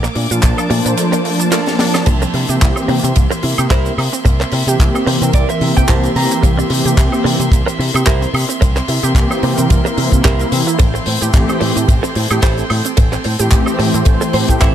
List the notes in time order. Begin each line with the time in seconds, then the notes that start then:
Already playing: A#3 D6
0.03 A#3, muted clean electric guitar stroke, clap, cabasa
0.15 A#2 D4, muted clean electric guitar stroke, open hi-hat
0.30 A#2 F3 A#3 D4 F4 A5, closed hi-hat, cabasa
0.42 A#1 D4, kick, clap, closed hi-hat, ride, cabasa
0.57 A#3, muted clean electric guitar stroke, closed hi-hat, cabasa, high woodblock
0.70 A#2 F3 A3 A#3 D4 C5, muted clean electric guitar stroke, open hi-hat
0.85 A#2 A#3, muted clean electric guitar stroke, closed hi-hat, cabasa
0.97 A3, closed hi-hat, ride, cabasa
1.12 A#3, muted clean electric guitar stroke, closed hi-hat, cabasa
1.24 F3 A3 A#3 D4 A5, muted clean electric guitar stroke, open hi-hat
1.40 D4, closed hi-hat, cabasa
1.52 A3 F4 A4 A#4 D5, snare, clap, closed hi-hat, ride, cabasa
1.66 D4, snare, closed hi-hat, cabasa
1.79 D4, snare, open hi-hat
1.94 D4, muted clean electric guitar stroke, snare, closed hi-hat, cabasa, high woodblock
2.06 C2 A#3 E5 C6, muted clean electric guitar stroke, kick, closed hi-hat, ride, crash, cabasa
2.22 C4, muted clean electric guitar stroke, cabasa
2.34 C3 E4, muted clean electric guitar stroke, open hi-hat
2.49 C3 E3 A#3 C4 G4, closed hi-hat, cabasa
2.61 C2 E4, kick, clap, closed hi-hat, ride, cabasa
2.76 C4, muted clean electric guitar stroke, cabasa, high woodblock
2.88 C3 E3 A#3 C4 G4, muted clean electric guitar stroke, open hi-hat
3.04 C3 C4, muted clean electric guitar stroke, closed hi-hat, cabasa
3.16 C2 A#3, kick, closed hi-hat, ride, cabasa
3.31 C4, muted clean electric guitar stroke, closed hi-hat, cabasa
3.43 C3 E4, muted clean electric guitar stroke, open hi-hat
3.58 C3 E3 A#3 C4 G4, closed hi-hat, cabasa, high woodblock
3.70 C2 E4 G4 A#4 C5, kick, clap, closed hi-hat, ride, cabasa
3.85 C4, closed hi-hat, cabasa
3.98 C3 A#3, open hi-hat, high woodblock
4.13 C4, muted clean electric guitar stroke, closed hi-hat, cabasa
4.25 C2 A#3, muted clean electric guitar stroke, kick, closed hi-hat, ride, cabasa
4.40 C4, muted clean electric guitar stroke, clap, cabasa
4.52 C3 E4, muted clean electric guitar stroke, open hi-hat
4.67 C3 E3 A#3 C4 G4, closed hi-hat, cabasa
4.80 C2 E4, kick, clap, closed hi-hat, ride, cabasa
4.95 C4, muted clean electric guitar stroke, cabasa, high woodblock
5.07 C3 E3 A#3 C4 A#4 C5, muted clean electric guitar stroke, open hi-hat
5.22 C3 C4, muted clean electric guitar stroke, closed hi-hat, cabasa
5.33 C2 A#3 D5, kick, closed hi-hat, ride, cabasa
5.49 C4 E5, muted clean electric guitar stroke, closed hi-hat, cabasa
5.61 C3 E3 A#3 C4 E4 G4, muted clean electric guitar stroke, open hi-hat
5.77 C3 G4 G5, kick, closed hi-hat, cabasa
5.88 C2 E4 G4 A#4 C5 A5, kick, clap, closed hi-hat, ride, cabasa
6.03 C4, closed hi-hat, cabasa
6.16 C3 A#3 A#5, open hi-hat
6.30 C4, muted clean electric guitar stroke, closed hi-hat, cabasa
6.43 C2 A#3, muted clean electric guitar stroke, kick, closed hi-hat, ride, cabasa
6.58 C4, muted clean electric guitar stroke, cabasa
6.70 C3 E4, muted clean electric guitar stroke, open hi-hat
6.85 C3 E3 A#3 C4 G4, closed hi-hat, cabasa
6.97 C2 E4, kick, clap, closed hi-hat, ride, cabasa
7.12 C4, muted clean electric guitar stroke, cabasa, high woodblock
7.24 C3 E3 A#3 C4 G4, muted clean electric guitar stroke, open hi-hat
7.39 C3 C4, muted clean electric guitar stroke, closed hi-hat, cabasa
7.52 C2 A#3, kick, closed hi-hat, ride, cabasa
7.66 C4, muted clean electric guitar stroke, closed hi-hat, cabasa
7.79 C3 E4, muted clean electric guitar stroke, open hi-hat
7.94 C3 E3 A#3 C4 G4, closed hi-hat, cabasa, high woodblock
8.06 C2 E4 G4 A#4 C5, kick, clap, closed hi-hat, ride, cabasa
8.21 C4, closed hi-hat, cabasa
8.33 C3 A#3, open hi-hat, high woodblock
8.49 C4, muted clean electric guitar stroke, closed hi-hat, cabasa
8.61 C2 A#3, muted clean electric guitar stroke, kick, closed hi-hat, ride, cabasa
8.76 C4, muted clean electric guitar stroke, clap, closed hi-hat, cabasa
8.88 C3 E4, muted clean electric guitar stroke, open hi-hat
9.03 C3 E3 A#3 C4 G4, closed hi-hat, cabasa
9.15 C2 E4, kick, clap, closed hi-hat, ride, cabasa
9.30 C4, muted clean electric guitar stroke, cabasa, high woodblock
9.42 C3 E3 A#3 C4 A#4, muted clean electric guitar stroke, open hi-hat
9.58 C3 C4, muted clean electric guitar stroke, closed hi-hat, cabasa
9.70 C2 A#3, kick, closed hi-hat, ride, cabasa
9.85 C4, muted clean electric guitar stroke, closed hi-hat, cabasa
9.97 C3 E3 A#3 C4 E4, muted clean electric guitar stroke, open hi-hat
10.11 C3 E3 A#3 C4 E4, kick, cabasa
10.24 C2 A#3 E4 G4 A#4 C5, kick, clap, closed hi-hat, ride, cabasa
10.39 A#4, closed hi-hat, cabasa
10.52 C3 E5, open hi-hat
10.67 E4, muted clean electric guitar stroke, closed hi-hat, cabasa
10.79 A1 A3 A4 G5, muted clean electric guitar stroke, kick, closed hi-hat, ride, cabasa
10.94 C4, muted clean electric guitar stroke, cabasa
11.06 A2 C5, muted clean electric guitar stroke, open hi-hat
11.21 A2 E3 A3 C4 G4, closed hi-hat, cabasa
11.34 A1 E4, kick, clap, closed hi-hat, ride, cabasa
11.48 C4, muted clean electric guitar stroke, cabasa, high woodblock
11.60 A2 E3 A3 C4 G4, muted clean electric guitar stroke, open hi-hat
11.76 A2 C4, muted clean electric guitar stroke, closed hi-hat, cabasa
11.88 A1 A3, kick, closed hi-hat, ride, cabasa
12.03 C4, muted clean electric guitar stroke, closed hi-hat, cabasa
12.15 A2 C5, muted clean electric guitar stroke, open hi-hat
12.30 A2 E3 A3 C4 G4, closed hi-hat, cabasa, high woodblock
12.42 A1 E4 G4 A4 C5, kick, clap, closed hi-hat, ride, cabasa
12.58 C4, closed hi-hat, cabasa
12.70 A2 A3, open hi-hat, high woodblock
12.85 C4, muted clean electric guitar stroke, closed hi-hat, cabasa
12.97 A1 A3, muted clean electric guitar stroke, kick, closed hi-hat, ride, cabasa
13.12 C4, muted clean electric guitar stroke, clap, cabasa
13.24 A2 C5, muted clean electric guitar stroke, open hi-hat
13.39 A2 E3 A3 C4 G4, closed hi-hat, cabasa
13.51 A1 E4, kick, clap, closed hi-hat, ride, cabasa
13.66 C4, muted clean electric guitar stroke, cabasa, high woodblock
13.79 A2 E3 A3 C4 C5, muted clean electric guitar stroke, open hi-hat
13.94 A2 C4, muted clean electric guitar stroke, closed hi-hat, cabasa
14.05 A1 A3, kick, closed hi-hat, ride, cabasa
14.21 C4, muted clean electric guitar stroke, closed hi-hat, cabasa
14.33 A2 E3 A3 C4 G4 C5, muted clean electric guitar stroke, open hi-hat
14.48 A2 G4, kick, closed hi-hat, cabasa
14.61 A1 E4 G4 A4 C5 E5, kick, clap, closed hi-hat, ride, cabasa